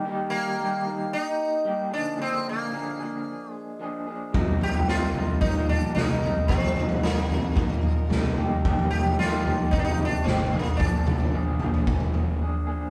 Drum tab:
SD |----------------|----------------|----o-------o---|----o-------o---|
T2 |----------------|----------------|------------oo--|------------oo--|
FT |----------------|----------------|oooo--o-ooo---o-|oooo--o-ooo---o-|
BD |----------------|----------------|o-------o-------|o-------o-------|

SD |----o-------o---|----------------|
T2 |------------oo--|--o-------------|
FT |oooo--o-ooo---o-|o-oo--ooooo-----|
BD |o-------o-------|o-------o-------|